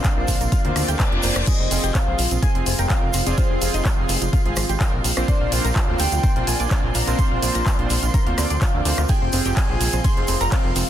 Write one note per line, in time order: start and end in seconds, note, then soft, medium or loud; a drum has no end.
0.00 1.44 C3 medium
0.00 1.43 F3 medium
0.00 1.44 A#3 medium
0.00 1.44 D4 medium
0.00 1.46 C5 medium
0.00 1.01 F5 loud
0.00 1.46 C6 medium
0.04 0.12 A#3 medium
0.04 kick loud
0.04 clap loud
0.04 closed hi-hat medium
0.04 shaker soft
0.17 0.24 A#1 medium
0.17 0.24 A#3 medium
0.17 0.29 A#3 medium
0.17 0.29 C4 medium
0.17 0.29 D4 medium
0.17 0.29 F4 medium
0.17 0.29 C5 medium
0.28 0.36 A#1 loud
0.28 kick medium
0.28 open hi-hat loud
0.28 shaker medium
0.41 0.48 A#1 medium
0.41 0.48 A#3 medium
0.41 closed hi-hat medium
0.41 shaker soft
0.52 0.60 F4 loud
0.52 kick loud
0.52 closed hi-hat medium
0.52 reverse cymbal medium
0.52 shaker soft
0.65 0.72 D2 medium
0.65 0.72 A#3 medium
0.65 0.72 C4 medium
0.65 0.72 D4 medium
0.65 0.72 F4 medium
0.65 0.72 C5 medium
0.65 closed hi-hat soft
0.76 0.84 D2 loud
0.76 0.84 A#3 loud
0.76 0.84 A#3 medium
0.76 0.84 C4 medium
0.76 0.84 D4 medium
0.76 0.84 F4 medium
0.76 0.84 D5 loud
0.76 cross-stick medium
0.76 open hi-hat loud
0.76 shaker medium
0.88 0.95 D2 medium
0.88 0.95 G4 medium
0.88 closed hi-hat medium
0.88 shaker soft
0.99 1.08 A#3 medium
0.99 1.44 D5 loud
0.99 1.49 D5 loud
0.99 kick loud
0.99 clap loud
0.99 closed hi-hat medium
0.99 shaker soft
1.12 1.19 F1 medium
1.12 1.20 A#3 medium
1.12 1.20 C4 medium
1.12 1.20 D4 medium
1.12 1.20 F4 medium
1.12 1.20 D5 medium
1.12 closed hi-hat soft
1.22 1.31 F1 medium
1.22 1.37 A#3 medium
1.22 1.31 A#3 medium
1.22 1.37 C4 medium
1.22 1.37 D4 medium
1.22 1.37 F4 medium
1.22 1.37 C5 medium
1.22 open hi-hat loud
1.22 shaker medium
1.36 1.43 F1 medium
1.36 1.43 A#3 medium
1.36 cross-stick medium
1.36 closed hi-hat medium
1.36 shaker soft
1.47 5.24 C3 medium
1.47 10.89 F3 medium
1.47 5.24 G#3 medium
1.47 5.24 F4 medium
1.47 1.55 G#4 loud
1.47 10.89 C5 medium
1.47 1.94 D#5 loud
1.47 1.92 D#5 loud
1.47 10.89 C6 medium
1.47 kick loud
1.47 closed hi-hat medium
1.47 crash medium
1.47 shaker soft
1.60 1.67 F1 medium
1.60 1.67 C4 medium
1.71 1.79 F1 loud
1.71 1.84 C4 medium
1.71 1.79 C4 medium
1.71 1.84 F4 medium
1.71 1.84 G#4 loud
1.71 open hi-hat loud
1.71 shaker loud
1.84 1.91 F1 medium
1.84 1.91 G4 loud
1.84 closed hi-hat medium
1.84 shaker soft
1.95 2.03 C4 medium
1.95 2.39 F5 loud
1.95 kick loud
1.95 clap loud
1.95 closed hi-hat medium
1.95 shaker soft
2.07 2.14 A#1 medium
2.07 2.19 C4 medium
2.07 2.14 C4 medium
2.07 2.20 F4 medium
2.07 2.19 G#4 medium
2.19 2.27 A#1 loud
2.19 open hi-hat loud
2.19 shaker medium
2.31 2.38 A#1 loud
2.31 2.38 C4 medium
2.31 closed hi-hat medium
2.31 shaker medium
2.42 2.50 G#4 medium
2.42 2.80 G#5 loud
2.42 2.76 G#5 loud
2.42 kick loud
2.42 closed hi-hat medium
2.42 shaker soft
2.55 2.62 F1 medium
2.55 2.62 C4 medium
2.55 2.63 C4 medium
2.55 2.63 F4 medium
2.55 2.63 G#4 medium
2.55 closed hi-hat soft
2.66 2.74 F1 medium
2.66 2.74 C4 medium
2.66 open hi-hat loud
2.66 shaker medium
2.78 2.86 F1 medium
2.78 2.86 A#4 medium
2.78 2.89 G5 loud
2.78 2.92 G5 loud
2.78 closed hi-hat medium
2.78 shaker medium
2.90 3.03 C4 loud
2.90 2.98 C4 medium
2.90 3.03 F4 medium
2.90 3.03 A#4 loud
2.90 3.24 F5 loud
2.90 3.28 F5 loud
2.90 kick loud
2.90 clap loud
2.90 closed hi-hat medium
2.90 shaker soft
3.03 3.10 F1 loud
3.13 3.22 F1 medium
3.13 3.22 C4 medium
3.13 open hi-hat loud
3.13 shaker loud
3.26 3.34 F1 loud
3.26 3.59 C4 loud
3.26 3.34 C4 medium
3.26 3.59 F4 medium
3.26 3.59 G#4 loud
3.26 3.37 D5 medium
3.26 3.39 D5 loud
3.26 closed hi-hat medium
3.26 shaker medium
3.37 3.46 F4 loud
3.37 3.85 C5 loud
3.37 3.82 C5 medium
3.37 kick loud
3.37 closed hi-hat medium
3.37 shaker soft
3.50 3.57 F1 medium
3.50 3.57 F3 medium
3.62 3.69 F1 loud
3.62 3.69 F3 medium
3.62 3.75 C4 medium
3.62 3.75 F4 medium
3.62 3.75 G#4 loud
3.62 open hi-hat loud
3.62 shaker loud
3.74 3.81 F1 medium
3.74 3.81 D#4 medium
3.74 closed hi-hat medium
3.74 shaker medium
3.85 kick loud
3.85 clap loud
3.85 closed hi-hat medium
3.85 shaker soft
3.98 4.05 F1 medium
3.98 4.05 F3 medium
3.98 4.10 C4 medium
3.98 4.10 F4 medium
3.98 4.10 G#4 medium
4.09 4.17 F1 loud
4.09 open hi-hat loud
4.09 shaker medium
4.21 4.29 F1 loud
4.21 4.29 F3 medium
4.21 closed hi-hat medium
4.21 shaker medium
4.33 4.41 F4 loud
4.33 kick loud
4.33 closed hi-hat medium
4.33 shaker soft
4.46 4.53 G#1 medium
4.46 4.53 F3 medium
4.46 4.53 C4 medium
4.46 4.53 F4 medium
4.46 4.53 G#4 medium
4.46 closed hi-hat soft
4.56 4.65 G#1 loud
4.56 4.65 F3 medium
4.56 cross-stick medium
4.56 open hi-hat loud
4.56 shaker loud
4.69 4.76 G#1 medium
4.69 4.76 G4 medium
4.69 closed hi-hat medium
4.69 shaker soft
4.80 4.88 F3 medium
4.80 4.94 C4 loud
4.80 4.94 F4 medium
4.80 4.94 A#4 loud
4.80 kick loud
4.80 clap loud
4.80 closed hi-hat medium
4.80 shaker soft
4.93 5.00 A#1 medium
5.04 5.12 A#1 loud
5.04 5.12 F3 medium
5.04 open hi-hat loud
5.04 shaker loud
5.17 5.24 A#1 loud
5.17 5.24 F3 medium
5.17 5.49 A#3 medium
5.17 5.49 C4 medium
5.17 5.49 D4 medium
5.17 5.49 F4 medium
5.17 5.49 C5 loud
5.17 cross-stick medium
5.17 shaker medium
5.28 10.89 C3 medium
5.28 9.05 A#3 medium
5.28 9.05 D4 loud
5.28 5.36 C5 loud
5.28 5.54 D5 loud
5.28 5.50 D5 loud
5.28 kick loud
5.28 closed hi-hat medium
5.28 shaker soft
5.41 5.48 A#1 medium
5.41 5.48 F4 medium
5.52 5.60 A#1 loud
5.52 5.65 A#3 medium
5.52 5.65 C4 medium
5.52 5.65 D4 medium
5.52 5.60 F4 medium
5.52 5.65 F4 medium
5.52 5.65 C5 loud
5.52 5.96 F5 loud
5.52 5.99 F5 loud
5.52 open hi-hat loud
5.52 shaker loud
5.65 5.72 A#1 medium
5.65 5.72 A#4 loud
5.65 closed hi-hat medium
5.65 shaker medium
5.76 5.84 F4 medium
5.76 kick loud
5.76 clap loud
5.76 closed hi-hat medium
5.88 5.95 D2 medium
5.88 6.00 A#3 medium
5.88 6.00 C4 medium
5.88 6.00 D4 medium
5.88 6.00 F4 medium
5.88 5.95 F4 medium
5.88 6.00 C5 medium
5.99 6.07 D2 loud
5.99 6.49 G5 loud
5.99 6.44 G5 loud
5.99 open hi-hat loud
5.99 shaker loud
6.12 6.19 D2 medium
6.12 6.19 F4 medium
6.12 closed hi-hat medium
6.12 shaker medium
6.23 6.31 C5 loud
6.23 kick loud
6.23 closed hi-hat medium
6.23 shaker soft
6.36 6.43 A#1 medium
6.36 6.43 A#3 medium
6.36 6.43 C4 medium
6.36 6.43 D4 medium
6.36 6.43 F4 medium
6.36 6.43 C5 medium
6.36 closed hi-hat soft
6.47 6.55 A#1 loud
6.47 6.55 F4 medium
6.47 6.92 G#5 loud
6.47 6.96 G#5 loud
6.47 open hi-hat loud
6.47 shaker medium
6.60 6.67 A#1 medium
6.60 6.67 D5 medium
6.60 closed hi-hat soft
6.60 shaker medium
6.71 6.84 A#3 medium
6.71 6.84 C4 medium
6.71 6.84 D4 medium
6.71 6.84 F4 medium
6.71 6.79 F4 medium
6.71 6.84 D5 loud
6.71 kick loud
6.71 clap loud
6.71 closed hi-hat medium
6.84 6.91 A#1 loud
6.95 7.03 A#1 medium
6.95 7.03 F4 medium
6.95 7.17 A#5 loud
6.95 7.20 A#5 loud
6.95 open hi-hat loud
6.95 shaker medium
7.07 7.14 A#1 loud
7.07 7.40 A#3 medium
7.07 7.40 C4 medium
7.07 7.40 D4 medium
7.07 7.40 F4 medium
7.07 7.14 F4 medium
7.07 7.40 C5 loud
7.07 closed hi-hat medium
7.07 shaker medium
7.19 7.27 C5 loud
7.19 8.58 C6 loud
7.19 8.63 C6 loud
7.19 kick loud
7.19 closed hi-hat medium
7.19 shaker soft
7.31 7.38 A#1 medium
7.31 7.38 F4 medium
7.42 7.50 A#1 loud
7.42 7.56 A#3 medium
7.42 7.56 C4 medium
7.42 7.56 D4 medium
7.42 7.56 F4 medium
7.42 7.50 F4 medium
7.42 7.56 C5 loud
7.42 open hi-hat loud
7.42 shaker loud
7.55 7.62 A#1 medium
7.55 7.62 A#4 loud
7.55 closed hi-hat medium
7.55 shaker medium
7.66 7.74 F4 medium
7.66 kick loud
7.66 clap loud
7.66 closed hi-hat medium
7.66 shaker soft
7.79 7.86 A#1 medium
7.79 7.91 A#3 medium
7.79 7.91 C4 medium
7.79 7.91 D4 medium
7.79 7.86 F4 medium
7.79 7.91 F4 medium
7.79 7.91 C5 medium
7.79 closed hi-hat soft
7.90 7.98 A#1 loud
7.90 open hi-hat loud
7.90 shaker medium
8.03 8.10 A#1 medium
8.03 8.10 F4 medium
8.03 closed hi-hat medium
8.03 shaker medium
8.14 8.22 A#4 medium
8.14 kick loud
8.14 closed hi-hat medium
8.14 shaker soft
8.26 8.33 D2 medium
8.26 8.34 A#3 medium
8.26 8.34 C4 medium
8.26 8.34 D4 medium
8.26 8.34 F4 medium
8.26 8.34 C5 medium
8.26 closed hi-hat soft
8.38 8.46 D2 loud
8.38 8.46 A#3 loud
8.38 8.46 C4 medium
8.38 8.46 D4 medium
8.38 8.46 F4 medium
8.38 8.46 D5 loud
8.38 cross-stick medium
8.38 open hi-hat loud
8.38 shaker loud
8.50 8.57 D2 medium
8.50 8.57 D5 medium
8.50 closed hi-hat soft
8.50 shaker soft
8.61 8.69 F4 medium
8.61 9.06 F5 loud
8.61 9.09 F5 loud
8.61 kick loud
8.61 clap loud
8.61 closed hi-hat medium
8.61 shaker soft
8.74 8.81 D2 medium
8.74 8.82 A#3 medium
8.74 8.82 C4 medium
8.74 8.82 D4 medium
8.74 8.82 F4 medium
8.74 8.82 D5 medium
8.85 8.93 D2 loud
8.85 8.99 A#3 medium
8.85 8.99 C4 medium
8.85 8.99 D4 medium
8.85 8.99 F4 medium
8.85 8.93 F4 medium
8.85 8.99 C5 medium
8.85 open hi-hat loud
8.85 shaker loud
8.98 9.05 D2 medium
8.98 9.05 F4 medium
8.98 cross-stick medium
8.98 shaker medium
9.08 10.89 G#3 medium
9.08 10.89 F4 medium
9.08 9.17 G#4 loud
9.08 9.53 G5 loud
9.08 9.58 G5 loud
9.08 kick loud
9.08 closed hi-hat medium
9.08 ride medium
9.08 shaker soft
9.22 9.29 F1 medium
9.22 9.29 C4 medium
9.32 9.41 F1 loud
9.32 9.46 C4 loud
9.32 9.41 C4 medium
9.32 9.46 F4 medium
9.32 9.46 G#4 loud
9.32 open hi-hat loud
9.32 shaker medium
9.46 9.53 F1 medium
9.46 9.53 G4 medium
9.46 closed hi-hat medium
9.46 shaker medium
9.57 9.65 C4 medium
9.57 10.01 G#5 loud
9.57 10.06 G#5 loud
9.57 kick loud
9.57 clap loud
9.57 closed hi-hat medium
9.57 ride medium
9.57 shaker soft
9.69 9.76 A#1 medium
9.69 9.81 C4 medium
9.69 9.76 C4 medium
9.69 9.81 F4 medium
9.69 9.81 G#4 medium
9.81 9.88 A#1 loud
9.81 open hi-hat loud
9.81 shaker medium
9.93 10.00 A#1 medium
9.93 10.00 C4 medium
9.93 closed hi-hat soft
9.93 shaker medium
10.04 10.12 G#4 loud
10.04 10.38 C6 loud
10.04 10.40 C6 loud
10.04 kick loud
10.04 closed hi-hat medium
10.04 ride medium
10.04 shaker soft
10.17 10.24 F1 medium
10.17 10.24 C4 medium
10.17 10.24 F4 medium
10.17 10.24 G#4 medium
10.17 closed hi-hat soft
10.28 10.36 F1 medium
10.28 10.36 C4 medium
10.28 open hi-hat loud
10.28 shaker medium
10.41 10.48 F1 medium
10.41 10.48 A#4 medium
10.41 10.51 A#5 loud
10.41 10.51 A#5 medium
10.41 closed hi-hat soft
10.41 shaker medium
10.52 10.65 C4 medium
10.52 10.60 C4 medium
10.52 10.65 F4 medium
10.52 10.65 A#4 loud
10.52 10.89 F5 loud
10.52 kick loud
10.52 clap loud
10.52 closed hi-hat medium
10.52 ride medium
10.65 10.72 F1 medium
10.76 10.84 F1 medium
10.76 10.84 C4 medium
10.76 open hi-hat loud
10.76 shaker medium